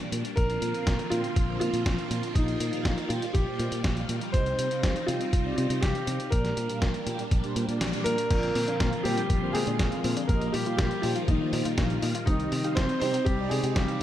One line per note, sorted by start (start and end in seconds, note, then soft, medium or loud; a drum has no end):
0.00 0.11 A#2 medium
0.00 0.33 G3 medium
0.00 0.11 A#3 medium
0.00 4.30 A#3 medium
0.00 0.10 D4 medium
0.00 0.35 D4 medium
0.00 0.10 G4 medium
0.00 0.10 D5 medium
0.00 closed hi-hat soft
0.12 0.22 A#2 medium
0.12 0.34 A#2 medium
0.12 0.34 A#3 medium
0.12 0.34 D4 medium
0.12 0.34 G4 medium
0.12 0.34 D5 medium
0.12 closed hi-hat medium
0.25 closed hi-hat medium
0.36 0.56 A#1 medium
0.36 0.63 A#2 medium
0.36 2.34 D3 medium
0.36 4.30 F3 medium
0.36 0.63 C4 medium
0.36 2.34 C4 medium
0.36 0.63 F4 medium
0.36 4.30 F4 medium
0.36 1.13 A#4 loud
0.36 0.63 A#4 medium
0.36 0.63 D5 medium
0.36 kick loud
0.36 closed hi-hat medium
0.50 closed hi-hat soft
0.62 0.71 A#2 medium
0.62 closed hi-hat medium
0.74 1.00 A#2 medium
0.74 1.00 C4 medium
0.74 1.00 F4 medium
0.74 1.00 A#4 medium
0.74 1.00 F5 loud
0.74 closed hi-hat soft
0.87 0.96 A#1 loud
0.87 kick loud
0.87 snare loud
0.87 closed hi-hat medium
0.99 closed hi-hat soft
1.10 1.21 A#2 medium
1.10 1.27 A#2 loud
1.10 1.27 C4 medium
1.10 1.58 F4 loud
1.10 1.27 F4 medium
1.10 1.27 A#4 medium
1.10 1.27 G5 loud
1.10 closed hi-hat medium
1.24 closed hi-hat soft
1.36 1.55 A#1 medium
1.36 kick loud
1.36 closed hi-hat medium
1.49 1.74 A#2 medium
1.49 1.74 C4 medium
1.49 1.74 F4 medium
1.49 1.74 A#4 medium
1.49 1.74 C5 loud
1.60 1.71 A#2 medium
1.60 2.31 F4 loud
1.60 closed hi-hat medium
1.73 1.83 A#2 medium
1.73 closed hi-hat soft
1.86 1.95 A#1 loud
1.86 2.32 A#2 medium
1.86 2.32 C4 medium
1.86 2.32 F4 medium
1.86 2.32 A#4 medium
1.86 2.32 F5 medium
1.86 kick loud
1.86 snare loud
1.86 closed hi-hat medium
1.98 closed hi-hat soft
2.11 2.20 A#2 loud
2.11 closed hi-hat medium
2.23 closed hi-hat medium
2.34 2.55 A#1 medium
2.34 2.61 A#2 medium
2.34 4.32 D#3 medium
2.34 6.28 G3 medium
2.34 2.61 A#3 medium
2.34 3.11 D#4 medium
2.34 2.61 F4 medium
2.34 2.61 G4 medium
2.34 2.61 D#5 medium
2.34 kick loud
2.34 closed hi-hat medium
2.48 closed hi-hat soft
2.60 2.70 A#2 medium
2.60 closed hi-hat medium
2.73 2.98 A#2 medium
2.73 2.98 A#3 medium
2.73 2.98 F4 medium
2.73 2.98 G4 medium
2.73 2.98 F5 loud
2.73 closed hi-hat medium
2.85 2.95 A#1 loud
2.85 kick loud
2.85 snare loud
2.85 closed hi-hat medium
2.98 closed hi-hat soft
3.08 3.26 A#2 loud
3.08 3.19 A#2 medium
3.08 3.26 A#3 medium
3.08 3.35 F4 medium
3.08 3.26 F4 medium
3.08 3.26 G4 medium
3.08 3.26 G5 loud
3.08 closed hi-hat medium
3.22 closed hi-hat medium
3.33 3.44 A#1 medium
3.33 4.04 G4 medium
3.33 kick loud
3.33 closed hi-hat medium
3.47 3.72 A#2 medium
3.47 3.72 A#3 medium
3.47 3.72 F4 medium
3.47 3.72 G4 medium
3.47 3.72 C5 loud
3.59 3.69 A#2 loud
3.59 closed hi-hat medium
3.72 3.81 A#2 medium
3.72 closed hi-hat medium
3.84 4.03 A#1 medium
3.84 4.31 A#2 medium
3.84 4.31 A#3 medium
3.84 4.31 F4 medium
3.84 4.31 G4 medium
3.84 4.31 F5 medium
3.84 kick medium
3.84 snare loud
3.84 closed hi-hat medium
3.97 closed hi-hat soft
4.09 4.19 A#2 medium
4.09 closed hi-hat medium
4.21 closed hi-hat medium
4.32 4.53 C2 loud
4.32 4.59 C3 medium
4.32 4.59 C4 medium
4.32 6.30 C4 medium
4.32 4.59 D#4 medium
4.32 6.30 D#4 medium
4.32 4.59 G4 medium
4.32 5.10 C5 loud
4.32 4.59 D#5 medium
4.32 kick loud
4.32 closed hi-hat medium
4.46 closed hi-hat soft
4.59 4.68 C3 medium
4.59 closed hi-hat medium
4.71 4.96 C3 medium
4.71 4.96 C4 medium
4.71 4.96 D#4 medium
4.71 4.96 G4 medium
4.71 4.96 F5 loud
4.71 closed hi-hat medium
4.83 4.93 C2 loud
4.83 kick loud
4.83 snare loud
4.83 closed hi-hat medium
4.96 closed hi-hat soft
5.06 5.18 C3 medium
5.06 5.24 C3 medium
5.06 5.24 C4 medium
5.06 5.24 D#4 medium
5.06 5.55 F4 medium
5.06 5.24 G4 medium
5.06 5.24 G5 loud
5.06 closed hi-hat medium
5.21 closed hi-hat medium
5.33 5.52 C2 loud
5.33 kick loud
5.33 closed hi-hat medium
5.45 5.71 C3 medium
5.45 5.71 C4 medium
5.45 5.71 D#4 medium
5.45 5.71 G4 medium
5.45 5.71 D5 loud
5.56 5.67 C3 medium
5.56 5.82 F4 medium
5.56 closed hi-hat medium
5.70 5.80 C3 medium
5.70 closed hi-hat medium
5.81 5.92 C2 loud
5.81 6.29 C3 medium
5.81 6.29 C4 medium
5.81 6.29 D#4 medium
5.81 6.33 G4 medium
5.81 6.29 G4 medium
5.81 6.29 F5 medium
5.81 kick loud
5.81 snare loud
5.81 closed hi-hat medium
5.95 closed hi-hat soft
6.07 6.17 C3 medium
6.07 closed hi-hat medium
6.20 closed hi-hat medium
6.30 6.51 A#1 loud
6.30 6.58 A#2 medium
6.30 8.28 G3 medium
6.30 8.28 A#3 medium
6.30 6.58 A#3 medium
6.30 8.28 D4 medium
6.30 6.58 D4 medium
6.30 6.58 G4 medium
6.30 6.79 A#4 loud
6.30 6.58 D5 medium
6.30 kick loud
6.30 closed hi-hat medium
6.45 snare soft
6.45 closed hi-hat soft
6.57 6.66 A#2 medium
6.57 closed hi-hat medium
6.69 6.95 A#2 medium
6.69 6.95 A#3 medium
6.69 6.95 D4 medium
6.69 6.95 G4 medium
6.69 6.95 F5 loud
6.69 closed hi-hat medium
6.80 6.91 A#1 loud
6.80 7.51 A#4 medium
6.80 kick loud
6.80 snare loud
6.80 closed hi-hat medium
6.94 closed hi-hat soft
7.07 7.16 A#2 loud
7.07 7.22 A#2 loud
7.07 7.22 A#3 medium
7.07 7.22 D4 medium
7.07 7.22 G4 medium
7.07 7.23 G5 loud
7.07 closed hi-hat medium
7.19 closed hi-hat medium
7.31 7.41 A#1 medium
7.31 kick loud
7.31 closed hi-hat medium
7.44 7.66 A#2 medium
7.44 7.66 A#3 medium
7.44 7.66 D4 medium
7.44 7.66 G4 medium
7.44 7.66 C5 loud
7.44 closed hi-hat soft
7.56 7.66 A#2 loud
7.56 closed hi-hat medium
7.69 7.90 A#2 medium
7.69 7.90 A#3 medium
7.69 7.90 D4 medium
7.69 7.90 G4 medium
7.69 7.90 D5 medium
7.69 closed hi-hat medium
7.81 7.90 A#1 medium
7.81 snare loud
7.81 closed hi-hat medium
7.93 8.04 A#2 medium
7.93 8.04 A#3 medium
7.93 8.04 D4 medium
7.93 8.04 G4 medium
7.93 8.04 D5 loud
7.93 closed hi-hat soft
8.04 8.15 A#2 medium
8.04 8.28 A#2 medium
8.04 8.28 A#3 medium
8.04 9.01 A#3 medium
8.04 8.28 D4 medium
8.04 8.28 G4 medium
8.04 9.00 A#4 loud
8.04 8.28 D5 medium
8.04 closed hi-hat medium
8.18 closed hi-hat medium
8.30 8.50 A#1 medium
8.30 8.56 A#2 medium
8.30 10.27 D3 medium
8.30 12.23 F3 medium
8.30 12.23 A#3 medium
8.30 8.35 A#3 medium
8.30 10.27 C4 medium
8.30 8.56 C4 medium
8.30 10.27 F4 medium
8.30 8.56 F4 medium
8.30 8.56 A#4 medium
8.30 8.56 D5 medium
8.30 kick loud
8.30 closed hi-hat medium
8.30 crash loud
8.43 closed hi-hat soft
8.55 8.65 A#2 medium
8.55 8.62 C4 medium
8.55 open hi-hat loud
8.68 8.93 A#2 medium
8.68 8.93 C4 medium
8.68 8.75 D4 medium
8.68 8.93 F4 medium
8.68 8.93 A#4 medium
8.68 8.93 F5 loud
8.68 closed hi-hat medium
8.80 8.90 A#1 loud
8.80 8.84 A#3 medium
8.80 kick loud
8.80 snare loud
8.80 closed hi-hat medium
8.93 closed hi-hat soft
9.03 9.14 A#2 loud
9.03 9.21 A#2 loud
9.03 9.51 G3 medium
9.03 9.12 C4 medium
9.03 9.21 C4 medium
9.03 9.21 F4 medium
9.03 9.55 G4 loud
9.03 9.21 A#4 medium
9.03 9.21 G5 loud
9.03 open hi-hat loud
9.17 9.24 D4 medium
9.17 closed hi-hat medium
9.30 9.49 A#1 loud
9.30 9.34 A#3 medium
9.30 kick loud
9.30 closed hi-hat medium
9.42 9.68 A#2 medium
9.42 9.68 C4 medium
9.42 9.68 F4 medium
9.42 9.68 A#4 medium
9.42 9.68 C5 loud
9.53 9.64 A#2 medium
9.53 10.25 G#3 medium
9.53 9.61 C4 medium
9.53 10.30 G#4 loud
9.53 open hi-hat loud
9.67 9.76 A#2 medium
9.67 9.74 D4 medium
9.67 closed hi-hat medium
9.79 9.89 A#1 loud
9.79 10.26 A#2 medium
9.79 9.83 A#3 medium
9.79 10.26 C4 medium
9.79 10.26 F4 medium
9.79 10.26 A#4 medium
9.79 10.26 F5 medium
9.79 kick loud
9.79 snare loud
9.79 closed hi-hat medium
9.92 closed hi-hat soft
10.04 10.14 A#2 loud
10.04 10.11 C4 medium
10.04 open hi-hat loud
10.17 10.23 D4 medium
10.17 closed hi-hat medium
10.28 10.48 A#1 loud
10.28 10.54 A#2 medium
10.28 12.25 D#3 medium
10.28 12.25 G3 medium
10.28 10.54 A#3 medium
10.28 10.33 A#3 medium
10.28 10.52 A#3 medium
10.28 12.25 F4 loud
10.28 10.54 F4 medium
10.28 10.54 G4 medium
10.28 10.51 A#4 loud
10.28 10.54 D#5 medium
10.28 kick loud
10.28 closed hi-hat medium
10.41 closed hi-hat soft
10.52 10.63 A#2 medium
10.52 10.77 G3 medium
10.52 10.61 D#4 medium
10.52 10.76 G4 medium
10.52 open hi-hat loud
10.66 10.92 A#2 medium
10.66 10.92 A#3 medium
10.66 10.92 F4 medium
10.66 10.73 F4 medium
10.66 10.92 G4 medium
10.66 10.92 F5 loud
10.66 closed hi-hat medium
10.77 10.88 A#1 loud
10.77 11.02 G3 medium
10.77 10.83 A#3 medium
10.77 11.03 G4 loud
10.77 kick loud
10.77 snare loud
10.77 closed hi-hat medium
10.91 closed hi-hat soft
11.02 11.19 A#2 loud
11.02 11.13 A#2 loud
11.02 11.27 F3 medium
11.02 11.19 A#3 medium
11.02 11.10 D#4 medium
11.02 11.28 F4 medium
11.02 11.19 F4 medium
11.02 11.19 G4 medium
11.02 11.19 G5 loud
11.02 open hi-hat loud
11.16 11.23 F4 medium
11.16 closed hi-hat medium
11.27 11.38 A#1 medium
11.27 11.99 D#3 medium
11.27 11.32 A#3 medium
11.27 11.98 D#4 medium
11.27 kick loud
11.27 closed hi-hat medium
11.40 11.66 A#2 loud
11.40 11.66 A#3 medium
11.40 11.66 F4 medium
11.40 11.66 G4 medium
11.40 11.66 C5 loud
11.53 11.62 A#2 loud
11.53 11.60 D#4 medium
11.53 open hi-hat loud
11.65 11.75 A#2 medium
11.65 11.72 F4 medium
11.65 closed hi-hat medium
11.78 11.97 A#1 loud
11.78 12.24 A#2 medium
11.78 11.82 A#3 medium
11.78 12.24 A#3 medium
11.78 12.24 F4 medium
11.78 12.24 G4 medium
11.78 12.24 F5 medium
11.78 kick loud
11.78 snare loud
11.78 closed hi-hat medium
11.90 closed hi-hat soft
12.02 12.12 A#2 medium
12.02 12.09 D#4 medium
12.02 open hi-hat loud
12.15 12.22 F4 medium
12.15 closed hi-hat medium
12.26 12.46 C2 loud
12.26 12.53 C3 medium
12.26 12.74 D#3 medium
12.26 14.03 G3 medium
12.26 12.53 C4 medium
12.26 14.03 C4 medium
12.26 12.31 C4 medium
12.26 12.73 D#4 loud
12.26 14.03 D#4 medium
12.26 12.53 D#4 medium
12.26 12.53 G4 medium
12.26 12.53 D#5 medium
12.26 kick loud
12.26 closed hi-hat medium
12.40 closed hi-hat soft
12.52 12.62 C3 medium
12.52 12.59 D#4 medium
12.52 open hi-hat loud
12.64 12.90 C3 medium
12.64 12.90 C4 medium
12.64 12.90 D#4 medium
12.64 12.90 G4 medium
12.64 12.71 G4 medium
12.64 12.90 F5 loud
12.64 closed hi-hat medium
12.75 12.86 C2 loud
12.75 12.81 C4 medium
12.75 13.00 C4 medium
12.75 12.98 C5 loud
12.75 kick loud
12.75 snare loud
12.75 closed hi-hat medium
12.89 closed hi-hat soft
13.00 13.17 C3 loud
13.00 13.11 C3 loud
13.00 13.17 C4 medium
13.00 13.25 C4 medium
13.00 13.17 D#4 medium
13.00 13.08 D#4 medium
13.00 13.17 G4 medium
13.00 13.26 C5 loud
13.00 13.17 G5 loud
13.00 open hi-hat loud
13.14 13.21 G4 medium
13.14 closed hi-hat medium
13.24 13.45 C2 loud
13.24 13.50 G3 medium
13.24 13.31 C4 medium
13.24 13.48 G4 loud
13.24 kick loud
13.24 closed hi-hat medium
13.39 13.64 C3 medium
13.39 13.64 C4 medium
13.39 13.64 D#4 medium
13.39 13.64 G4 medium
13.39 13.64 D5 loud
13.49 13.61 C3 medium
13.49 13.75 G#3 medium
13.49 13.58 D#4 medium
13.49 13.76 G#4 medium
13.49 open hi-hat loud
13.63 13.73 C3 medium
13.63 13.70 G4 medium
13.63 closed hi-hat medium
13.74 13.86 C2 loud
13.74 14.03 C3 medium
13.74 14.03 G3 medium
13.74 14.03 C4 medium
13.74 13.80 C4 medium
13.74 14.03 D#4 medium
13.74 14.03 G4 medium
13.74 14.03 F5 medium
13.74 kick loud
13.74 snare loud
13.74 closed hi-hat medium
13.88 closed hi-hat soft